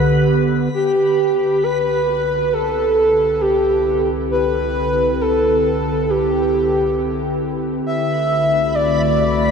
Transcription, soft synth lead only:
0.74 1.65 G4 medium
1.63 2.55 B4 loud
2.53 3.43 A4 medium
3.41 4.09 G4 medium
4.31 5.23 B4 loud
5.21 6.12 A4 medium
6.10 7.42 G4 medium
7.86 8.76 E5 loud
8.75 9.51 D5 medium

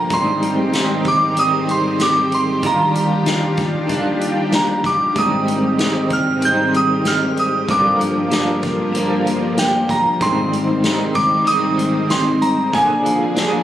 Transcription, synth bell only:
0.00 0.12 A#5 medium
0.14 1.09 C6 medium
1.08 1.36 D6 medium
1.39 1.71 D#6 loud
1.71 2.02 C6 medium
2.02 2.31 D6 medium
2.35 2.65 C6 medium
2.66 3.55 A#5 medium
4.55 4.86 A#5 medium
4.86 5.18 D6 medium
5.18 6.15 D#6 medium
6.13 6.44 F6 medium
6.45 6.76 G6 loud
6.77 7.08 D#6 medium
7.08 7.39 F6 medium
7.40 7.71 D#6 medium
7.71 8.60 D6 medium
9.59 9.91 G5 medium
9.91 10.22 A#5 medium
10.22 11.19 C6 loud
11.15 11.48 D6 medium
11.47 12.12 D#6 loud
12.11 12.43 C6 medium
12.42 12.74 A#5 medium
12.75 13.63 G#5 medium

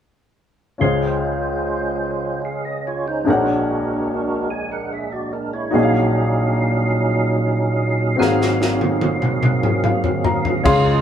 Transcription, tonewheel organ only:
0.81 3.23 G#3 soft
0.81 3.24 C#4 soft
0.81 2.42 F4 soft
0.81 2.42 C5 medium
2.45 2.65 G#4 soft
2.45 2.65 F5 soft
2.65 2.85 D#5 soft
2.87 3.06 F4 soft
2.87 3.06 C#5 soft
3.08 3.46 D#4 soft
3.08 3.46 C5 soft
3.28 5.70 G#3 medium
3.28 4.49 D4 soft
3.28 4.48 F#4 soft
3.28 4.49 A#4 medium
4.50 4.70 G#5 soft
4.72 4.91 A#4 soft
4.72 4.91 F#5 soft
4.93 5.12 G#4 soft
4.93 5.12 E5 soft
5.12 5.32 F#4 soft
5.12 5.32 D5 soft
5.33 5.53 D4 soft
5.33 5.52 A#4 soft
5.53 5.92 E4 soft
5.53 5.92 C#5 soft
5.74 8.16 A#2 medium
5.74 8.16 F#3 soft
5.74 8.16 C#4 soft
5.74 8.16 D#4 medium
5.74 8.16 G#4 medium
5.74 8.16 F5 soft
8.19 10.62 F#3 medium
8.19 10.62 A#3 soft
8.19 8.26 B3 soft
8.19 10.62 G#4 medium
8.19 10.62 F5 soft
8.26 10.65 C4 soft
10.65 11.01 C#3 soft
10.65 11.01 G#3 medium
10.65 11.01 F4 soft
10.65 11.01 G#4 medium

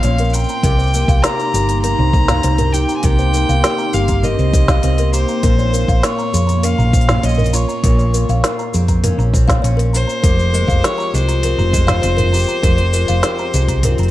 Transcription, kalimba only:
0.04 0.18 C#5 loud
0.20 0.28 A#4 loud
0.35 0.48 A#5 medium
0.50 0.58 A#5 medium
0.64 0.78 A#4 medium
0.78 0.93 C5 medium
0.95 1.03 A#4 medium
1.09 1.23 F5 loud
1.25 1.39 A#4 medium
1.40 1.54 A#5 loud
1.55 1.63 G4 medium
1.70 1.78 A#5 medium
1.84 1.98 A#4 medium
2.00 2.13 C5 medium
2.14 2.28 C5 medium
2.29 2.44 F5 loud
2.44 2.58 C5 loud
2.58 2.67 A#4 loud
2.74 2.88 A#5 medium
2.89 2.98 A#5 medium
3.05 3.19 A#4 medium
3.19 3.33 C5 medium
3.34 3.43 A#4 medium
3.49 3.63 F5 loud
3.64 3.78 A#4 medium
3.78 3.93 A#5 loud
3.94 4.03 G4 medium
4.09 4.18 A#5 medium
4.24 4.38 A#4 medium
4.40 4.53 C5 medium
4.54 4.69 C5 medium
4.69 4.83 F5 loud
4.84 4.98 C5 loud
4.99 5.08 A#4 loud
5.13 5.27 A#5 medium
5.29 5.37 A#5 medium
5.44 5.58 A#4 medium
5.59 5.73 C#5 medium
5.73 5.82 A#4 medium
5.89 6.03 F5 loud
6.04 6.18 A#4 medium
6.19 6.33 A#5 loud
6.33 6.42 G#4 medium
6.47 6.57 A#5 medium
6.63 6.78 A#4 medium
6.78 6.87 A#5 medium
6.94 7.09 C5 medium
7.09 7.24 F5 loud
7.23 7.38 C#5 medium
7.38 7.47 A#4 loud
7.53 7.67 A#5 medium
7.69 7.77 A#5 medium
7.85 7.99 A#4 medium
7.99 8.13 C#5 medium
8.14 8.23 A#4 medium
8.30 8.44 F5 loud
8.44 8.58 A#4 medium
8.59 8.73 A#5 loud
8.74 8.83 G#4 medium
8.89 8.97 A#5 medium
9.04 9.18 A#4 medium
9.19 9.28 A#5 medium
9.33 9.48 C5 medium
9.48 9.63 F5 loud
9.62 9.77 C#5 loud
9.77 9.87 A#4 loud
9.93 10.06 A#5 medium
10.07 10.17 A#5 medium
10.23 10.38 A#4 medium
10.39 10.53 C5 medium
10.54 10.62 A#4 medium
10.68 10.83 F5 loud
10.84 10.98 A#4 medium
10.98 11.13 A#5 loud
11.14 11.23 G#4 medium
11.28 11.37 A#5 medium
11.44 11.59 A#4 medium
11.59 11.67 A#5 medium
11.72 11.87 C5 medium
11.87 12.02 F5 loud
12.02 12.17 C5 loud
12.17 12.27 A#4 loud
12.33 12.47 A#5 medium
12.48 12.57 A#5 medium
12.62 12.78 A#4 medium
12.77 12.93 C5 medium
12.93 13.02 A#4 medium
13.08 13.23 F5 loud
13.24 13.38 A#4 medium
13.39 13.53 A#5 loud
13.55 13.63 G#4 medium
13.69 13.77 A#5 medium
13.84 13.99 A#4 medium
14.00 14.08 A#5 medium

